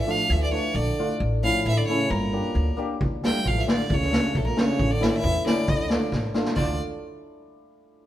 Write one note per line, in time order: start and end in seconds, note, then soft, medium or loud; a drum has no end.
0.00 0.12 E5 medium
0.05 0.28 F3 medium
0.05 0.18 A3 medium
0.05 0.18 D4 medium
0.05 0.19 F4 medium
0.10 0.34 F5 loud
0.28 0.57 D2 loud
0.28 0.76 E3 medium
0.28 0.42 E5 loud
0.43 0.52 D5 medium
0.51 0.63 A3 medium
0.51 0.63 D4 medium
0.51 0.63 F4 medium
0.51 0.77 C#5 medium
0.74 0.88 A#1 loud
0.74 1.09 D3 medium
0.74 1.09 D5 loud
0.99 1.10 A3 medium
0.99 1.10 D4 medium
0.99 1.10 F4 medium
1.20 1.47 A1 loud
1.43 1.65 F3 medium
1.43 1.54 A3 medium
1.43 1.55 C#4 medium
1.43 1.55 E4 medium
1.43 1.65 F5 loud
1.66 1.79 A1 loud
1.66 1.75 E3 medium
1.66 1.79 E5 loud
1.76 1.88 D3 medium
1.76 1.87 D5 medium
1.86 2.11 C#3 medium
1.86 2.00 A3 medium
1.86 2.00 C#4 medium
1.86 2.00 E4 medium
1.86 2.12 C#5 loud
2.09 2.38 G1 loud
2.09 2.78 A#2 medium
2.09 2.78 A#4 medium
2.33 2.45 A#3 medium
2.33 2.44 D4 medium
2.33 2.45 G4 medium
2.55 2.69 D2 loud
2.77 2.89 A#3 medium
2.77 2.89 D4 medium
2.77 2.90 G4 medium
3.01 3.28 D2 loud
3.01 kick medium
3.22 3.46 G3 medium
3.22 3.35 A3 medium
3.22 3.35 D4 medium
3.22 3.35 F4 medium
3.22 3.49 G5 loud
3.22 snare medium
3.44 3.59 A1 medium
3.44 3.58 F3 medium
3.44 3.62 F5 loud
3.44 kick medium
3.56 3.60 E3 medium
3.56 3.64 F3 medium
3.60 3.68 E3 medium
3.60 3.70 E5 medium
3.67 3.88 D3 medium
3.67 3.79 A3 medium
3.67 3.79 D4 medium
3.67 3.79 F4 medium
3.67 snare medium
3.72 3.96 D5 medium
3.88 4.17 D2 loud
3.88 4.36 C#3 medium
3.88 kick loud
3.94 4.38 C#5 loud
4.02 snare soft
4.11 4.23 A3 medium
4.11 4.23 D4 medium
4.11 4.23 F4 medium
4.11 snare medium
4.34 4.48 A#1 loud
4.34 4.46 A2 medium
4.34 4.47 A4 medium
4.34 kick medium
4.47 4.59 A#2 medium
4.47 4.60 A#4 medium
4.56 4.93 C#3 medium
4.56 4.68 A3 medium
4.56 4.68 D4 medium
4.56 4.68 F4 medium
4.56 4.92 C#5 medium
4.56 snare medium
4.79 5.06 A1 loud
4.79 kick medium
4.91 5.17 D3 medium
4.91 5.04 D5 loud
5.00 5.12 A3 medium
5.00 5.12 C#4 medium
5.00 5.12 E4 medium
5.00 5.10 E5 medium
5.00 snare medium
5.09 5.17 D5 medium
5.16 5.39 E3 medium
5.16 5.47 E5 loud
5.24 5.37 E2 loud
5.24 kick medium
5.39 5.49 E3 medium
5.45 6.13 D3 medium
5.45 5.56 A3 medium
5.45 5.57 C#4 medium
5.45 5.57 E4 medium
5.45 6.09 D5 medium
5.45 snare medium
5.68 5.95 D2 loud
5.68 kick medium
5.90 6.01 A3 medium
5.90 6.02 D4 medium
5.90 6.01 F4 medium
5.90 snare medium
6.12 6.25 A1 medium
6.12 kick medium
6.12 snare medium
6.34 6.46 A3 medium
6.34 6.46 D4 medium
6.34 6.46 F4 medium
6.34 snare medium
6.45 snare medium
6.56 6.77 D2 loud
6.56 6.78 D3 medium
6.56 6.77 A3 medium
6.56 6.77 D4 medium
6.56 6.77 F4 medium
6.56 6.77 D5 loud
6.56 kick loud
6.56 crash medium